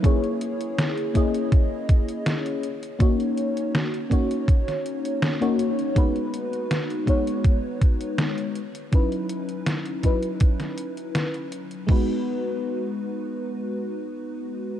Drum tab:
CC |----------------|----------------|----------------|----------------|
HH |xxxxxxxxx-xxxxxx|xxxxxxxxxxxxxxxx|xxxxxxxxx-xxxxxx|xxxxxxxxxxxxxxxx|
SD |----o-------o---|----o----o--o---|----o-------o---|----o----o--o---|
BD |o-----o-o-o-----|o-----o-o-------|o-----o-o-o-----|o-----o-o-------|

CC |x---------------|
HH |----------------|
SD |----------------|
BD |o---------------|